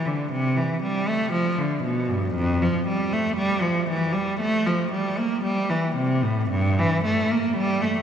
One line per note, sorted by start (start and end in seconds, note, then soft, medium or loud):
0.06 0.32 D3 medium
0.32 0.57 C3 medium
0.57 0.83 E3 medium
0.83 1.08 G3 medium
1.09 1.34 A3 medium
1.33 1.58 F3 medium
1.59 1.84 D3 medium
1.83 2.09 B2 medium
2.10 2.35 G2 medium
2.35 2.60 F2 medium
2.63 2.87 F3 medium
2.87 3.11 G3 medium
3.13 3.38 A3 medium
3.37 3.62 G3 medium
3.62 3.88 F3 medium
3.90 4.15 E3 medium
4.13 4.40 G3 medium
4.40 4.65 A3 medium
4.67 4.92 F3 medium
4.92 5.17 G3 medium
5.18 5.43 A#3 medium
5.44 5.69 G3 medium
5.70 5.96 E3 medium
5.96 6.22 C3 medium
6.23 6.50 A2 medium
6.51 6.77 G2 medium
6.79 7.05 E3 medium
7.04 7.30 A3 medium
7.31 7.56 A#3 medium
7.57 7.82 G3 medium
7.82 8.02 A3 medium